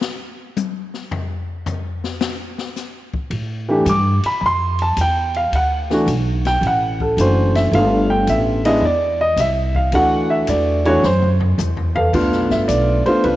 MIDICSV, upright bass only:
0, 0, Header, 1, 3, 480
1, 0, Start_track
1, 0, Tempo, 550964
1, 977, Time_signature, 4, 2, 24, 8
1, 11640, End_track
2, 0, Start_track
2, 0, Title_t, "Upright bass"
2, 0, Program_c, 0, 32
2, 2878, Note_on_c, 0, 45, 74
2, 3351, Note_off_c, 0, 45, 0
2, 3359, Note_on_c, 0, 43, 95
2, 3668, Note_off_c, 0, 43, 0
2, 3845, Note_on_c, 0, 41, 88
2, 4315, Note_off_c, 0, 41, 0
2, 4327, Note_on_c, 0, 40, 82
2, 4795, Note_off_c, 0, 40, 0
2, 4809, Note_on_c, 0, 38, 78
2, 5277, Note_off_c, 0, 38, 0
2, 5282, Note_on_c, 0, 35, 88
2, 5753, Note_off_c, 0, 35, 0
2, 5760, Note_on_c, 0, 33, 86
2, 6232, Note_off_c, 0, 33, 0
2, 6245, Note_on_c, 0, 30, 89
2, 6715, Note_off_c, 0, 30, 0
2, 6722, Note_on_c, 0, 31, 84
2, 7193, Note_off_c, 0, 31, 0
2, 7204, Note_on_c, 0, 33, 97
2, 7672, Note_off_c, 0, 33, 0
2, 7677, Note_on_c, 0, 40, 85
2, 8151, Note_off_c, 0, 40, 0
2, 8159, Note_on_c, 0, 36, 91
2, 8631, Note_off_c, 0, 36, 0
2, 8642, Note_on_c, 0, 38, 83
2, 9113, Note_off_c, 0, 38, 0
2, 9131, Note_on_c, 0, 40, 99
2, 9598, Note_off_c, 0, 40, 0
2, 9608, Note_on_c, 0, 42, 86
2, 10076, Note_off_c, 0, 42, 0
2, 10088, Note_on_c, 0, 40, 86
2, 10557, Note_off_c, 0, 40, 0
2, 10570, Note_on_c, 0, 38, 72
2, 10738, Note_off_c, 0, 38, 0
2, 10738, Note_on_c, 0, 35, 53
2, 10887, Note_off_c, 0, 35, 0
2, 10892, Note_on_c, 0, 31, 60
2, 11042, Note_off_c, 0, 31, 0
2, 11053, Note_on_c, 0, 35, 78
2, 11357, Note_off_c, 0, 35, 0
2, 11535, Note_on_c, 0, 36, 80
2, 11640, Note_off_c, 0, 36, 0
2, 11640, End_track
3, 0, Start_track
3, 0, Title_t, "Muted upright bass strokes"
3, 3691, Note_on_c, 9, 29, 36
3, 3778, Note_off_c, 9, 29, 0
3, 11640, End_track
0, 0, End_of_file